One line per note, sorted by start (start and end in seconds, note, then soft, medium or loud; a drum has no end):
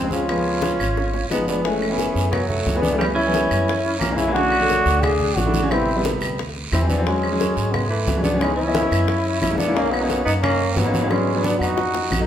0.00 0.74 C#2 medium
0.00 0.21 C#3 medium
0.00 0.12 G#3 medium
0.00 0.21 G#3 medium
0.00 0.12 C4 loud
0.00 0.21 C4 medium
0.11 1.27 C#4 medium
0.11 1.27 F4 loud
0.11 high conga medium
0.11 short guiro medium
0.28 0.76 F3 medium
0.28 0.76 G#3 medium
0.28 0.77 B3 medium
0.28 high bongo medium
0.28 high conga soft
0.28 long guiro medium
0.28 claves medium
0.46 high bongo soft
0.46 high conga soft
0.62 high bongo loud
0.62 high conga medium
0.62 short guiro medium
0.79 1.27 G#1 medium
0.79 high conga soft
0.79 short guiro medium
0.79 claves medium
0.97 high bongo medium
0.97 high conga soft
0.97 long guiro medium
1.14 low bongo medium
1.14 high conga soft
1.30 2.10 F#1 medium
1.30 1.42 F3 medium
1.30 1.43 G#3 medium
1.30 1.43 B3 medium
1.30 1.48 B3 medium
1.30 1.49 D#4 medium
1.30 low bongo medium
1.30 high conga medium
1.30 short guiro medium
1.30 claves medium
1.47 1.65 F3 medium
1.47 1.64 G#3 medium
1.47 1.63 B3 medium
1.47 1.65 B3 medium
1.47 1.64 D4 medium
1.47 low bongo medium
1.47 short guiro medium
1.64 1.82 E3 medium
1.64 1.83 G#3 medium
1.64 2.28 A3 medium
1.64 1.83 A3 medium
1.64 2.28 C#4 medium
1.64 high bongo medium
1.64 high conga soft
1.64 long guiro medium
1.81 high bongo soft
1.81 high conga soft
1.81 claves medium
1.90 2.37 E3 medium
1.90 2.38 B3 medium
1.90 2.38 G#4 medium
1.98 high bongo medium
1.98 high conga medium
1.98 short guiro medium
2.15 2.62 F#2 loud
2.15 high bongo soft
2.15 high conga soft
2.15 short guiro medium
2.31 2.48 F#3 medium
2.31 2.49 B3 medium
2.31 high bongo medium
2.31 high conga soft
2.31 low conga medium
2.31 long guiro medium
2.31 claves medium
2.47 2.81 F#3 medium
2.47 2.80 A3 medium
2.47 high bongo soft
2.47 high conga soft
2.47 low conga medium
2.66 3.45 C#2 medium
2.66 high bongo soft
2.66 low bongo medium
2.66 high conga medium
2.66 short guiro medium
2.75 2.87 E3 medium
2.75 2.87 G#3 medium
2.75 2.87 B3 medium
2.81 2.98 B3 medium
2.81 2.97 D4 medium
2.81 high conga medium
2.81 short guiro medium
2.92 2.98 E3 medium
2.92 2.98 G#3 medium
2.92 2.98 A3 medium
2.98 3.18 E3 medium
2.98 3.06 G3 medium
2.98 3.18 G3 medium
2.98 3.19 B3 medium
2.98 3.06 C#4 medium
2.98 high bongo medium
2.98 high conga soft
2.98 long guiro medium
2.98 claves medium
3.14 3.96 C#4 medium
3.14 3.97 E4 medium
3.14 high conga soft
3.19 high bongo soft
3.26 3.68 E3 medium
3.26 3.69 G3 medium
3.26 3.69 B3 medium
3.34 high bongo medium
3.34 high conga medium
3.34 short guiro medium
3.51 3.98 F#2 medium
3.51 high bongo soft
3.51 high conga soft
3.51 short guiro medium
3.51 claves medium
3.68 high bongo medium
3.68 high conga soft
3.68 long guiro medium
3.85 high bongo soft
3.85 high conga soft
3.99 4.80 B1 medium
3.99 4.18 A#3 medium
3.99 4.17 C#4 medium
3.99 high bongo soft
3.99 low bongo medium
3.99 high conga medium
3.99 short guiro medium
3.99 claves medium
4.10 4.22 E3 medium
4.10 4.22 G#3 medium
4.10 4.23 A#3 medium
4.16 4.33 C#4 medium
4.16 4.33 E4 loud
4.16 high conga medium
4.16 short guiro medium
4.27 4.33 E3 medium
4.27 4.33 G#3 medium
4.27 4.33 A#3 medium
4.34 4.53 D3 medium
4.34 4.53 A3 medium
4.34 4.54 C#4 medium
4.34 5.02 D4 medium
4.34 5.04 F#4 loud
4.34 high bongo medium
4.34 high conga soft
4.34 long guiro medium
4.51 high bongo soft
4.51 high conga soft
4.51 claves medium
4.60 5.08 D3 medium
4.60 5.08 A3 medium
4.60 5.08 C#5 medium
4.69 high bongo medium
4.69 high conga medium
4.69 short guiro medium
4.85 5.33 D2 loud
4.85 high bongo soft
4.85 high conga soft
4.85 short guiro medium
5.02 5.36 D4 medium
5.02 5.38 G#4 loud
5.02 high bongo medium
5.02 high conga soft
5.02 low conga medium
5.02 long guiro medium
5.02 claves medium
5.20 high bongo soft
5.20 high conga soft
5.20 low conga medium
5.36 6.16 A1 medium
5.36 5.73 D4 medium
5.36 5.73 F#4 medium
5.36 high bongo soft
5.36 low bongo medium
5.36 high conga medium
5.36 short guiro medium
5.45 5.57 D3 medium
5.45 5.58 A3 medium
5.45 5.58 E4 medium
5.54 high conga medium
5.54 short guiro medium
5.62 5.68 D3 medium
5.62 5.68 A3 medium
5.62 5.69 C#4 loud
5.70 5.88 C3 medium
5.70 5.89 G3 medium
5.70 5.89 B3 medium
5.70 6.05 C4 medium
5.70 6.05 E4 loud
5.70 high bongo medium
5.70 high conga soft
5.70 long guiro medium
5.70 claves medium
5.88 high bongo soft
5.88 high conga soft
5.95 6.38 C3 medium
5.95 6.38 G3 medium
5.95 6.39 B3 medium
6.04 high bongo medium
6.04 high conga medium
6.04 short guiro medium
6.21 6.69 D2 loud
6.21 high bongo soft
6.21 high conga soft
6.21 short guiro medium
6.21 claves medium
6.38 high bongo medium
6.38 high conga soft
6.38 long guiro medium
6.56 high bongo soft
6.56 high conga soft
6.72 7.51 E2 medium
6.72 6.88 C4 medium
6.72 6.88 E4 medium
6.72 high bongo soft
6.72 low bongo medium
6.72 high conga medium
6.72 short guiro medium
6.72 claves medium
6.81 6.93 E3 medium
6.81 6.93 F#3 medium
6.81 6.93 C4 medium
6.89 7.05 B3 medium
6.89 7.05 D4 medium
6.89 high conga medium
6.89 short guiro medium
6.98 7.04 E3 medium
6.98 7.04 F#3 medium
6.98 7.04 C4 loud
7.05 7.24 F#3 medium
7.05 7.73 G#3 medium
7.05 7.25 G#3 medium
7.05 7.73 C#4 medium
7.05 7.25 C#4 medium
7.05 high bongo medium
7.05 high conga soft
7.05 long guiro medium
7.23 high bongo soft
7.23 high conga soft
7.23 claves medium
7.32 7.79 F#3 medium
7.32 7.79 G#3 medium
7.32 7.79 C#4 loud
7.40 high bongo medium
7.40 high conga medium
7.40 short guiro medium
7.57 8.04 G#2 loud
7.57 high bongo soft
7.57 high conga soft
7.57 short guiro medium
7.71 7.89 G#3 medium
7.71 7.87 B3 medium
7.71 high bongo medium
7.71 high conga soft
7.71 low conga medium
7.71 long guiro medium
7.71 claves medium
7.88 8.21 E3 medium
7.88 8.20 A3 medium
7.88 high bongo soft
7.88 high conga soft
8.06 8.86 C#2 medium
8.06 high bongo soft
8.06 low bongo medium
8.06 high conga medium
8.06 short guiro medium
8.16 8.28 F#3 medium
8.16 8.28 G#3 medium
8.16 8.28 C#4 medium
8.22 8.42 B3 medium
8.22 8.40 D4 medium
8.22 high conga medium
8.22 short guiro medium
8.32 8.39 F#3 medium
8.32 8.39 G#3 medium
8.32 8.39 C#4 medium
8.39 8.59 E3 medium
8.39 8.55 G#3 medium
8.39 8.59 B3 medium
8.39 8.55 C#4 loud
8.39 8.59 D#4 medium
8.39 high bongo medium
8.39 high conga soft
8.39 long guiro medium
8.39 claves medium
8.56 9.37 C#4 medium
8.56 9.37 E4 loud
8.56 high bongo soft
8.56 high conga soft
8.67 9.09 E3 medium
8.67 9.09 B3 medium
8.67 9.09 D#5 medium
8.75 high bongo medium
8.75 high conga medium
8.75 short guiro medium
8.91 9.39 F#2 loud
8.91 high bongo soft
8.91 high conga soft
8.91 short guiro medium
8.91 claves medium
9.08 high bongo medium
9.08 high conga soft
9.08 long guiro medium
9.25 high bongo soft
9.25 high conga soft
9.41 10.21 B1 medium
9.41 9.59 C#4 medium
9.41 9.59 E4 medium
9.41 high bongo soft
9.41 low bongo medium
9.41 high conga medium
9.41 short guiro medium
9.41 claves medium
9.51 9.63 G#3 medium
9.51 9.63 A#3 medium
9.51 9.63 E4 medium
9.57 9.76 B3 medium
9.57 9.76 D4 medium
9.57 high conga medium
9.57 short guiro medium
9.67 9.73 G#3 medium
9.67 9.73 A#3 medium
9.67 9.74 E4 loud
9.74 9.93 A#3 medium
9.74 9.94 C#4 loud
9.74 9.94 C#4 medium
9.74 9.94 D#4 loud
9.74 high bongo medium
9.74 high conga soft
9.74 long guiro medium
9.91 10.24 F#3 medium
9.91 10.25 B3 medium
9.91 high bongo soft
9.91 high conga soft
9.91 claves medium
10.00 10.48 A#3 medium
10.00 10.48 C#4 medium
10.00 10.49 D#4 loud
10.10 high bongo medium
10.10 high conga medium
10.10 short guiro medium
10.25 10.73 F#2 loud
10.25 10.33 B3 medium
10.25 10.33 D#4 medium
10.25 high bongo soft
10.25 high conga soft
10.25 short guiro medium
10.42 10.78 A#3 medium
10.42 10.77 C#4 loud
10.42 high bongo medium
10.42 high conga soft
10.42 low conga medium
10.42 long guiro medium
10.42 claves medium
10.60 high bongo soft
10.60 high conga soft
10.75 11.55 G#2 medium
10.75 11.12 F#3 medium
10.75 11.10 B3 medium
10.75 high bongo soft
10.75 low bongo medium
10.75 high conga medium
10.75 short guiro medium
10.85 10.97 A#3 medium
10.85 10.97 C#4 medium
10.85 10.98 D#4 medium
10.94 high conga medium
10.94 short guiro medium
11.01 11.08 A#3 medium
11.01 11.08 C#4 medium
11.01 11.08 D#4 medium
11.09 11.28 F#3 medium
11.09 11.45 G#3 medium
11.09 11.28 B3 medium
11.09 11.45 C#4 loud
11.09 11.28 D4 loud
11.09 high bongo medium
11.09 high conga soft
11.09 long guiro medium
11.09 claves medium
11.28 high conga soft
11.34 11.77 F#3 medium
11.34 11.78 B3 medium
11.34 11.78 D4 medium
11.44 11.55 B3 medium
11.44 11.55 D4 medium
11.44 high conga medium
11.44 short guiro medium
11.59 12.08 F2 medium
11.59 12.25 D#4 medium
11.59 12.24 F#4 loud
11.59 high conga soft
11.59 short guiro medium
11.59 claves medium
11.77 low bongo medium
11.77 high conga soft
11.77 long guiro medium
11.94 low bongo medium
11.94 high conga soft
12.11 12.27 A#1 medium
12.11 low bongo medium
12.11 high conga medium
12.11 short guiro medium
12.11 claves medium
12.19 12.27 F#3 medium
12.19 12.27 A3 medium
12.19 12.27 D#4 loud